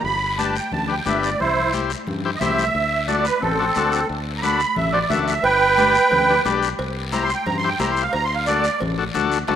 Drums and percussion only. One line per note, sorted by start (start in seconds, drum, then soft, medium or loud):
0.05 high conga soft
0.05 long guiro medium
0.38 high conga medium
0.38 short guiro medium
0.56 short guiro medium
0.72 high conga soft
0.72 low conga medium
0.72 long guiro medium
1.06 high conga medium
1.06 short guiro medium
1.23 short guiro medium
1.40 high conga soft
1.40 low conga medium
1.40 long guiro medium
1.73 high conga medium
1.73 short guiro medium
1.90 short guiro medium
2.07 high conga soft
2.07 low conga medium
2.07 long guiro medium
2.41 high conga medium
2.41 low conga medium
2.41 short guiro medium
2.58 short guiro medium
2.75 high conga soft
2.75 long guiro medium
3.08 high conga medium
3.08 short guiro medium
3.25 short guiro medium
3.42 high conga soft
3.42 low conga medium
3.42 long guiro medium
3.75 high conga medium
3.75 short guiro medium
3.92 short guiro medium
4.09 high conga soft
4.09 long guiro medium
4.42 high conga medium
4.42 short guiro medium
4.60 short guiro medium
4.76 high conga soft
4.76 low conga medium
4.76 long guiro medium
5.10 high conga medium
5.10 low conga medium
5.10 short guiro medium
5.28 short guiro medium
5.44 cowbell loud
5.44 high conga soft
5.44 long guiro medium
5.77 cowbell medium
5.77 high conga medium
5.77 short guiro medium
5.95 short guiro medium
6.11 cowbell medium
6.11 high conga soft
6.11 low conga medium
6.11 long guiro medium
6.45 cowbell medium
6.45 high conga medium
6.45 low timbale medium
6.45 short guiro medium
6.63 short guiro medium
6.79 cowbell loud
6.79 high conga soft
6.79 long guiro medium
7.12 cowbell medium
7.12 high conga medium
7.12 short guiro medium
7.29 short guiro medium
7.46 cowbell medium
7.46 high conga soft
7.46 low conga medium
7.46 long guiro medium
7.79 cowbell medium
7.79 high conga medium
7.79 low timbale medium
7.79 short guiro medium
7.96 short guiro medium
8.13 cowbell loud
8.13 high conga soft
8.13 long guiro medium
8.46 cowbell medium
8.46 high conga medium
8.46 short guiro medium
8.64 short guiro medium
8.80 cowbell medium
8.80 high conga soft
8.80 low conga medium
8.80 long guiro medium
9.15 cowbell medium
9.15 high conga medium
9.15 short guiro medium
9.32 short guiro medium
9.48 high conga medium
9.48 high timbale loud
9.48 long guiro loud